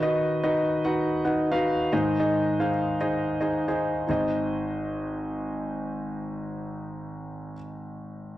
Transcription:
Already playing: D#3 D#4 F#4 B4 D#5
0.02 D#4 F#4 B4 D#5
0.43 D#4 F#4 B4 D#5
0.84 D#4 F#4 B4 F#5
1.25 D#4 F#4 B4 F#5
1.52 D#4 F#4 B4 F5
1.92 G#2 D#3 D#4 G#4 C5 D#5
2.20 D#4 G#4 C5 D#5
2.60 D#4 G#4 C5 F5
3.01 D#4 G#4 C5 D#5
3.41 D#4 G#4 C5 D#5
3.68 D#4 G#4 C5 D#5
4.07 G#1 D#4 G#4 C5 D#5

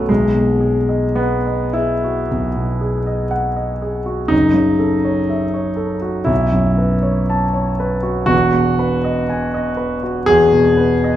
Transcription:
Already playing: B1 F#2 A3 B3 C#4 F#4 A4 C#5 E5
0.09 B1 G#3
0.34 B2
0.60 G#4
0.89 D#5
1.16 B3 F#5
1.47 D#5
1.73 E4 G#4
2.04 F#4
2.31 B1
2.57 B2
2.81 G#4
3.07 D#5
3.31 F#5
3.56 D#5
3.82 G#4
4.06 F#4
4.28 F#1 F#2 D#4
4.54 C#3
4.79 A4
5.04 C#5
5.30 E5
5.54 C#5
5.76 A4
6.02 F#4
6.25 B1 E4
6.52 F#2
6.78 B4
7.03 C#5
7.30 A5
7.54 C#5
7.80 B4
8.03 F#4
8.26 E1 E2 F#4
8.54 B2
8.79 B4
9.04 D#5
9.29 G#5
9.54 D#5
9.77 B4
10.03 F#4
10.26 E2 G#4
10.53 B2
10.77 B4
11.04 D#5

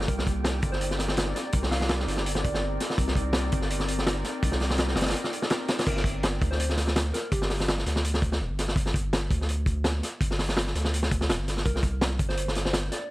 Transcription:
Already playing: G4 G5
0.01 snare
0.08 C2 C4 D#4 A#4 D5, kick, closed hi-hat
0.18 A#4, snare
0.27 kick, closed hi-hat
0.44 snare, closed hi-hat
0.62 G1, kick, closed hi-hat
0.72 C5, snare
0.81 closed hi-hat
0.91 snare
0.99 snare, closed hi-hat
1.08 C5, snare
1.17 snare, closed hi-hat
1.35 D5, snare, closed hi-hat
1.45 D5
1.52 C2 C4 D#4 A#4 D5, kick, closed hi-hat
1.63 snare
1.71 F5, snare, open hi-hat
1.81 snare
1.89 snare, closed hi-hat
2.00 snare
2.07 G1, snare, closed hi-hat
2.17 snare
2.26 closed hi-hat
2.35 snare
2.44 D5, kick, closed hi-hat
2.54 snare
2.80 snare, closed hi-hat
2.90 snare
2.98 C2 C4 D#4 A#4 D5, kick, closed hi-hat
3.08 snare
3.15 kick, closed hi-hat
3.33 snare, closed hi-hat
3.52 G1, kick, closed hi-hat
3.61 snare
3.70 closed hi-hat
3.80 snare
3.88 closed hi-hat
3.98 snare
4.07 snare, closed hi-hat
4.24 snare, closed hi-hat
4.42 C2 C4 D#4 A#4 D5, kick, closed hi-hat
4.52 snare
4.60 snare, open hi-hat
4.70 snare
4.78 snare, closed hi-hat
4.88 snare
4.95 G1, snare, closed hi-hat
5.01 snare, closed hi-hat
5.06 snare, closed hi-hat
5.09 snare, closed hi-hat
5.15 closed hi-hat
5.24 snare
5.33 closed hi-hat
5.42 snare
5.50 snare, closed hi-hat
5.68 snare, closed hi-hat
5.79 snare, closed hi-hat
5.86 G1 A#4, kick, closed hi-hat, crash
5.96 A#4, snare
6.04 kick, closed hi-hat
6.23 snare, closed hi-hat
6.42 D2, kick, closed hi-hat
6.51 C5, snare
6.60 closed hi-hat
6.69 snare
6.77 snare, closed hi-hat
6.87 snare
6.96 snare, closed hi-hat
7.14 A#4, snare, closed hi-hat
7.32 G1 G4, kick, closed hi-hat
7.42 snare
7.49 snare, open hi-hat
7.60 snare
7.68 snare, closed hi-hat
7.78 snare
7.86 D2, snare, closed hi-hat
7.96 snare
8.04 closed hi-hat
8.14 snare
8.22 kick, closed hi-hat
8.32 snare
8.40 D1
8.50 G1
8.59 snare, closed hi-hat
8.68 snare
8.76 G1, kick, closed hi-hat
8.86 snare
8.94 kick, closed hi-hat
9.13 snare, closed hi-hat
9.30 D2, kick, closed hi-hat
9.41 snare
9.49 closed hi-hat
9.66 kick, closed hi-hat
9.84 snare, closed hi-hat
10.03 snare, closed hi-hat
10.21 G1, kick, closed hi-hat
10.31 snare
10.39 snare, open hi-hat
10.49 snare
10.57 snare, closed hi-hat
10.66 snare
10.75 D2, snare, closed hi-hat
10.84 snare
10.94 closed hi-hat
11.03 snare
11.11 kick, closed hi-hat
11.21 snare
11.29 D1, snare, closed hi-hat
11.39 G1
11.48 snare, closed hi-hat
11.57 snare
11.65 C2 A#4, kick, closed hi-hat
11.75 A#4, snare
11.83 kick, closed hi-hat
12.01 snare, closed hi-hat
12.19 G1, kick, closed hi-hat
12.29 C5, snare
12.37 closed hi-hat
12.48 snare
12.55 snare, closed hi-hat
12.65 C5, snare
12.73 snare, closed hi-hat
12.92 D5, snare, closed hi-hat
13.01 D5

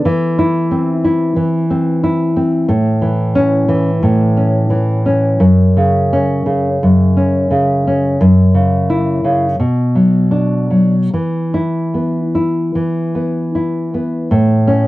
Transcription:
0.05 E3
0.39 E4
0.71 C4
1.05 E4
1.36 E3
1.70 C4
2.03 E4
2.36 C4
2.68 A2
3.02 E3
3.35 C#4
3.68 E3
4.03 A2
4.37 C#4
4.70 E3
5.06 C#4
5.40 F#2
5.77 C#3
6.13 C#4
6.46 C#3
6.83 F#2
7.17 C#4
7.51 C#3
7.87 C#4
8.21 F#2
8.54 C#3
8.90 E4
9.24 C#3
9.60 B2
9.95 F#3
10.31 D4
10.70 F#3
11.14 E3
11.54 E4
11.94 B3
12.35 E4
12.75 E3
13.15 B3
13.55 E4
13.94 B3
14.31 A2
14.67 C#4

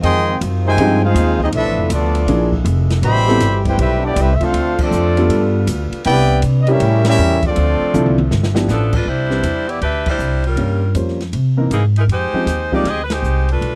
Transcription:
Already playing: C4
0.01 F2 D#3 F3 G#3 C4 F4 G#4 D#5 G5 C6, ride
0.41 F#2, hi-hat pedal, ride
0.64 C3 D#3 G#3 D#4 C5 G5 G#5
0.77 G2 F3 G#3 C4 D#4 G4, ride
1.03 G#3 C4 D#4 F4 G#4 C5 F5
1.14 D#2, hi-hat pedal, ride
1.40 G#3 C4 D#4 G4 G#4 D#5, kick
1.52 B1 D3 F3 A3 B3 D4 E4 A4 B4 E5, ride
1.65 A1
1.78 F1
1.90 D2 F3 A3 B3 D4 F4 A4 D5, hi-hat pedal, ride
2.15 ride
2.25 A#1 F3 G#3 A#3 D4 E4, ride
2.29 G#4
2.52 kick
2.65 F1, hi-hat pedal, ride
2.90 snare, ride
3.01 A1 B2 E3 G3 A3 G4 C5 E5 B5, ride
3.16 snare
3.28 G3 B3 C4 E4 A4, snare
3.39 G1, snare, hi-hat pedal, ride
3.65 C4 E4 G4 B4 C5 G5, kick, ride
3.77 B1 G3 C4 E4 G4 B4 E5, ride
4.00 D4
4.05 B3 E4 G4 D5
4.13 C2 G3 C4 E4, hi-hat pedal, ride
4.19 C4 G4 B4 E5
4.34 E5
4.39 A3 C4 F4, muted upright bass stroke, kick, ride
4.43 D4 A4 C5 F5
4.53 D2 D3 C4 F4, ride
4.78 F3 A3 D4 F4 A4 D5, kick, crash
4.83 C4
4.91 F2, hi-hat pedal
5.17 G3 B3 D4 F4 A4, ride
5.28 G2 G3 B3, ride
5.67 D2, hi-hat pedal, ride
5.92 muted upright bass stroke, ride
6.04 C2 C3 E3 B3 D4 E4 G4 B4 D5 G5, ride
6.42 C3, hi-hat pedal, ride
6.61 D#5
6.67 G3 C#4 E4 G4 A#4, ride
6.71 C#4 G4 A#4 E5
6.79 A2 C#3 A3 A#3 G4, ride
7.05 G3 C#4 E4 G4 A#4 E5, snare, ride
7.18 E2, hi-hat pedal
7.43 F3 A3 C4 D4 F4 D5, kick, ride
7.47 A4
7.55 D2 D3 F3 C4, ride
7.81 muted upright bass stroke
7.94 C2 F3 C4 D4 E4 A4, hi-hat pedal, mid tom
8.06 mid tom
8.18 mid tom
8.31 G1 E3 B3, snare
8.43 snare
8.54 F3 B3 D4 E4 G4, snare
8.68 A1 F3 B3 D4 A4, snare, hi-hat pedal
8.93 A3 D4 F4 B4, kick, crash
9.05 C2 G3 D4 E4 C5
9.29 G3 C4 D4 E4 B4, snare
9.42 E2, hi-hat pedal, ride
9.68 B3 E4 G4 D5, ride
9.81 D2 D4 G4 B4 E5, ride
10.06 G3 D4 E4 C5, kick, crash
10.19 C2, hi-hat pedal
10.44 G3 C#4 F4 A#4, ride
10.56 G2 G3 A#3 C#4 F4 A#4, ride
10.95 F2 G3 A#3 C#4 F4 C5, hi-hat pedal, ride
11.08 snare
11.20 snare, ride
11.33 C3, ride
11.57 E3 A#3 C4 D#4 A#4
11.71 G#2 E3 A#3 D#4 G#4, hi-hat pedal, ride
11.96 G#3 D#4 E4 A#4, ride
12.07 F2, ride
12.12 G#3 D#4 G4 C5
12.33 F3 G#3 C4 D#4 G4, muted upright bass stroke
12.46 D#2, snare, hi-hat pedal, ride
12.72 F3 G#3 A#3 C4 D#4 G4 D5, kick
12.84 D2 G4, snare, ride
12.88 C4 G#4 D#5
13.03 B4
13.10 G#3 D#4 G4 C5, snare, ride
13.22 C2, hi-hat pedal
13.49 A3 D4 F4 B4, ride
13.61 B1, ride

